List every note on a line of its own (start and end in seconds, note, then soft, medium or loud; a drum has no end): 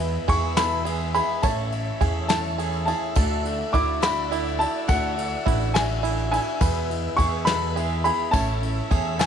0.00 0.16 E2 medium
0.00 1.40 E2 medium
0.00 1.40 E3 medium
0.00 0.27 E3 soft
0.00 0.28 G#3 soft
0.00 0.19 B3 medium
0.00 0.29 B3 soft
0.00 0.29 E4 medium
0.00 0.29 G#4 medium
0.00 0.27 B4 medium
0.00 1.43 B4 medium
0.00 0.30 E5 medium
0.00 3.13 E5 medium
0.00 1.43 G#5 medium
0.00 1.42 E6 medium
0.00 ride medium
0.28 1.19 E2 loud
0.28 0.57 E3 medium
0.28 0.57 G#3 medium
0.28 0.48 B3 medium
0.28 0.56 B3 medium
0.28 0.48 E4 medium
0.28 0.56 E4 medium
0.28 0.56 G#4 medium
0.28 0.48 G#4 medium
0.28 0.49 E5 medium
0.28 0.58 C#6 loud
0.28 kick medium
0.28 ride medium
0.57 0.87 E2 medium
0.57 0.86 B2 medium
0.57 0.84 E3 medium
0.57 0.85 G#3 medium
0.57 0.77 B3 medium
0.57 0.85 B3 medium
0.57 0.86 E4 medium
0.57 0.77 E4 medium
0.57 0.77 G#4 medium
0.57 0.85 A4 medium
0.57 0.77 E5 medium
0.57 1.13 B5 loud
0.57 snare loud
0.57 ride medium
0.57 tambourine loud
0.85 1.14 E3 medium
0.85 1.15 G#3 medium
0.85 1.05 B3 medium
0.85 1.13 B3 medium
0.85 1.06 E4 medium
0.85 1.13 E4 medium
0.85 1.13 G#4 medium
0.85 1.06 G#4 medium
0.85 1.06 E5 medium
0.85 ride medium
1.00 tambourine soft
1.14 1.43 E3 soft
1.14 1.44 G#3 soft
1.14 1.43 B3 soft
1.14 1.34 B3 medium
1.14 1.43 E4 soft
1.14 1.35 E4 medium
1.14 1.43 G#4 medium
1.14 1.35 G#4 soft
1.14 1.35 E5 medium
1.14 1.44 B5 medium
1.14 ride medium
1.42 1.89 A1 medium
1.42 3.12 A1 medium
1.42 1.72 A2 medium
1.42 3.12 A2 medium
1.42 1.73 E3 medium
1.42 1.73 A3 medium
1.42 1.63 C#4 medium
1.42 1.72 C#4 loud
1.42 1.63 E4 medium
1.42 1.71 E4 medium
1.42 1.63 A4 medium
1.42 6.58 A4 medium
1.42 2.00 C#5 medium
1.42 3.15 C#5 medium
1.42 1.64 E5 medium
1.42 2.27 A5 medium
1.42 8.30 E6 medium
1.42 kick loud
1.42 ride medium
1.42 tambourine loud
1.72 2.00 A3 soft
1.72 1.92 C#4 medium
1.72 2.01 C#4 soft
1.72 2.01 E4 soft
1.72 1.92 E4 medium
1.72 1.92 A4 medium
1.72 1.92 E5 medium
1.72 ride medium
2.00 2.91 E2 medium
2.00 2.29 E3 medium
2.00 2.30 A3 medium
2.00 2.20 C#4 medium
2.00 2.30 C#4 medium
2.00 2.21 E4 medium
2.00 2.29 E4 medium
2.00 2.29 G#4 medium
2.00 2.21 A4 medium
2.00 2.21 E5 medium
2.00 kick medium
2.00 ride medium
2.28 2.58 E3 medium
2.28 2.58 A3 medium
2.28 2.49 C#4 medium
2.28 2.59 C#4 medium
2.28 2.59 E4 medium
2.28 2.50 E4 medium
2.28 2.58 A4 medium
2.28 2.50 A4 medium
2.28 2.50 E5 medium
2.28 2.84 A5 medium
2.28 snare loud
2.28 ride medium
2.28 tambourine medium
2.32 2.60 A2 medium
2.44 tambourine soft
2.58 2.88 E3 medium
2.58 2.88 A3 medium
2.58 2.78 C#4 medium
2.58 2.87 C#4 medium
2.58 2.78 E4 medium
2.58 2.85 E4 medium
2.58 2.87 G#4 medium
2.58 2.79 A4 medium
2.58 2.79 E5 medium
2.58 ride medium
2.73 tambourine soft
2.86 3.15 A3 soft
2.86 3.07 C#4 medium
2.86 3.16 C#4 soft
2.86 3.16 E4 soft
2.86 3.07 E4 medium
2.86 3.16 G#4 medium
2.86 3.07 A4 medium
2.86 3.08 E5 medium
2.86 3.40 A5 medium
2.86 ride medium
3.15 3.61 D2 loud
3.15 4.85 D2 medium
3.15 3.45 D3 medium
3.15 4.85 D3 medium
3.15 3.45 F#3 medium
3.15 3.45 A3 medium
3.15 3.36 D4 medium
3.15 3.45 D4 medium
3.15 3.44 E4 medium
3.15 3.36 F#4 medium
3.15 3.73 A4 medium
3.15 3.36 A4 medium
3.15 6.58 D5 medium
3.15 3.36 E5 medium
3.15 6.58 F#5 medium
3.15 kick loud
3.15 ride medium
3.15 tambourine loud
3.44 3.72 A3 soft
3.44 3.64 D4 medium
3.44 3.73 D4 medium
3.44 3.74 E4 medium
3.44 3.64 F#4 medium
3.44 3.64 A4 medium
3.44 3.65 E5 medium
3.44 ride medium
3.72 4.64 D2 medium
3.72 4.02 F#3 medium
3.72 4.01 A3 medium
3.72 3.93 D4 medium
3.72 4.00 D4 medium
3.72 4.02 E4 medium
3.72 4.00 E4 medium
3.72 3.93 F#4 medium
3.72 3.93 A4 medium
3.72 3.94 E5 medium
3.72 4.00 D6 medium
3.72 kick medium
3.72 ride medium
4.01 4.31 D3 medium
4.01 4.28 F#3 medium
4.01 4.29 A3 medium
4.01 4.21 D4 medium
4.01 4.30 D4 medium
4.01 4.30 E4 medium
4.01 4.21 F#4 medium
4.01 4.31 F#4 medium
4.01 4.22 A4 medium
4.01 4.22 E5 medium
4.01 4.62 B5 loud
4.01 snare loud
4.01 ride medium
4.01 tambourine loud
4.30 4.59 F#3 medium
4.30 4.60 A3 medium
4.30 4.50 D4 medium
4.30 4.58 D4 medium
4.30 4.59 E4 medium
4.30 4.57 E4 medium
4.30 4.50 F#4 medium
4.30 4.50 A4 medium
4.30 4.51 E5 medium
4.30 ride medium
4.46 tambourine soft
4.58 4.87 A3 soft
4.58 4.79 D4 medium
4.58 4.88 D4 soft
4.58 4.88 E4 medium
4.58 4.79 F#4 medium
4.58 4.79 A4 medium
4.58 4.80 E5 medium
4.58 4.89 A5 medium
4.58 ride medium
4.87 6.57 D2 medium
4.87 5.34 D2 medium
4.87 5.17 D3 medium
4.87 6.57 D3 medium
4.87 5.17 F#3 medium
4.87 5.17 A3 medium
4.87 5.07 D4 medium
4.87 5.17 D4 medium
4.87 5.15 E4 medium
4.87 5.08 F#4 medium
4.87 5.08 A4 medium
4.87 5.45 A4 medium
4.87 5.08 E5 medium
4.87 5.77 F#5 medium
4.87 kick loud
4.87 ride medium
4.87 tambourine loud
5.16 5.45 A3 soft
5.16 5.36 D4 medium
5.16 5.46 D4 soft
5.16 5.46 E4 soft
5.16 5.37 F#4 medium
5.16 5.37 A4 medium
5.16 5.37 E5 medium
5.16 ride medium
5.16 tambourine soft
5.45 6.37 A1 medium
5.45 5.74 F#3 medium
5.45 5.74 A3 medium
5.45 5.65 D4 medium
5.45 5.73 D4 medium
5.45 5.74 E4 medium
5.45 5.72 E4 medium
5.45 5.65 F#4 medium
5.45 5.66 A4 medium
5.45 5.66 E5 medium
5.45 kick medium
5.45 ride medium
5.61 tambourine soft
5.74 6.04 D3 medium
5.74 6.01 F#3 medium
5.74 6.02 A3 medium
5.74 6.03 D4 medium
5.74 5.94 D4 medium
5.74 6.03 E4 medium
5.74 5.94 F#4 medium
5.74 6.03 F#4 medium
5.74 5.94 A4 medium
5.74 5.95 E5 medium
5.74 6.30 G#5 medium
5.74 snare loud
5.74 ride medium
5.74 tambourine medium
6.02 6.32 F#3 medium
6.02 6.32 A3 medium
6.02 6.23 D4 medium
6.02 6.32 D4 medium
6.02 6.31 E4 medium
6.02 6.23 F#4 medium
6.02 6.23 A4 medium
6.02 6.23 E5 medium
6.02 ride medium
6.02 tambourine soft
6.18 tambourine soft
6.31 6.61 A3 soft
6.31 6.51 D4 medium
6.31 6.61 D4 soft
6.31 6.61 E4 medium
6.31 6.60 E4 medium
6.31 6.52 F#4 medium
6.31 6.52 A4 medium
6.31 6.52 E5 medium
6.31 6.86 G#5 medium
6.31 ride medium
6.60 6.90 E2 medium
6.60 7.06 E2 loud
6.60 8.30 E2 medium
6.60 6.90 B2 medium
6.60 6.90 E3 medium
6.60 8.30 E3 medium
6.60 6.90 G#3 medium
6.60 6.80 B3 medium
6.60 6.90 B3 medium
6.60 6.81 E4 medium
6.60 6.89 E4 medium
6.60 6.81 G#4 medium
6.60 7.17 B4 medium
6.60 8.32 B4 medium
6.60 9.26 E5 medium
6.60 6.81 E5 medium
6.60 8.32 G#5 medium
6.60 kick loud
6.60 ride medium
6.60 tambourine medium
6.90 7.17 E3 soft
6.90 7.18 G#3 soft
6.90 7.09 B3 medium
6.90 7.19 B3 soft
6.90 7.19 E4 medium
6.90 7.10 E4 soft
6.90 7.10 G#4 soft
6.90 7.10 E5 medium
6.90 ride medium
7.17 8.09 E2 loud
7.17 7.47 E3 medium
7.17 7.48 G#3 medium
7.17 7.38 B3 medium
7.17 7.38 E4 medium
7.17 7.46 G#4 medium
7.17 7.38 G#4 medium
7.17 7.39 E5 medium
7.17 7.47 C#6 loud
7.17 kick medium
7.17 ride medium
7.21 7.47 B3 medium
7.21 7.47 E4 medium
7.45 7.67 B3 medium
7.45 7.77 B3 medium
7.45 7.67 E4 medium
7.45 7.76 E4 medium
7.45 7.67 G#4 medium
7.45 7.75 A4 medium
7.45 7.67 E5 medium
7.45 8.03 B5 medium
7.45 snare loud
7.45 ride medium
7.45 tambourine medium
7.49 7.77 E2 medium
7.49 7.77 B2 medium
7.49 7.76 E3 medium
7.49 7.77 G#3 medium
7.76 8.05 E3 medium
7.76 8.06 G#3 medium
7.76 7.95 B3 medium
7.76 8.05 B3 medium
7.76 7.96 E4 medium
7.76 8.04 E4 medium
7.76 8.04 G#4 medium
7.76 7.96 G#4 medium
7.76 7.96 E5 medium
7.76 ride medium
7.90 tambourine soft
8.04 8.33 E3 soft
8.04 8.34 G#3 soft
8.04 8.24 B3 medium
8.04 8.34 B3 medium
8.04 8.24 E4 medium
8.04 8.34 E4 soft
8.04 8.33 G#4 medium
8.04 8.25 G#4 medium
8.04 8.25 E5 medium
8.04 8.31 B5 loud
8.04 ride medium
8.31 9.26 A1 medium
8.31 8.79 A1 medium
8.31 8.62 A2 medium
8.31 9.26 A2 medium
8.31 8.63 E3 medium
8.31 8.63 A3 medium
8.31 8.53 C#4 medium
8.31 8.63 C#4 medium
8.31 8.53 E4 medium
8.31 9.26 A4 medium
8.31 8.53 A4 medium
8.31 9.26 C#5 medium
8.31 8.90 C#5 medium
8.31 8.53 E5 medium
8.31 9.15 A5 loud
8.31 9.26 E6 medium
8.31 kick loud
8.31 ride medium
8.31 tambourine loud
8.35 8.61 E4 medium
8.62 8.90 A3 soft
8.62 8.82 C#4 medium
8.62 8.91 C#4 soft
8.62 8.82 E4 medium
8.62 8.91 E4 medium
8.62 8.82 A4 medium
8.62 8.82 E5 medium
8.62 ride medium
8.90 9.26 E2 medium
8.90 9.20 E3 medium
8.90 9.20 A3 medium
8.90 9.10 C#4 medium
8.90 9.20 C#4 medium
8.90 9.11 E4 medium
8.90 9.19 E4 medium
8.90 9.19 G#4 medium
8.90 9.11 A4 medium
8.90 9.11 E5 medium
8.90 kick medium
8.90 ride medium
9.19 9.26 A2 medium
9.19 9.26 E3 medium
9.19 9.26 A3 medium
9.19 9.26 C#4 medium
9.19 9.26 E4 medium
9.19 9.26 A4 medium
9.19 9.26 E5 medium
9.19 9.26 G#5 medium
9.19 snare loud
9.19 ride medium
9.19 tambourine medium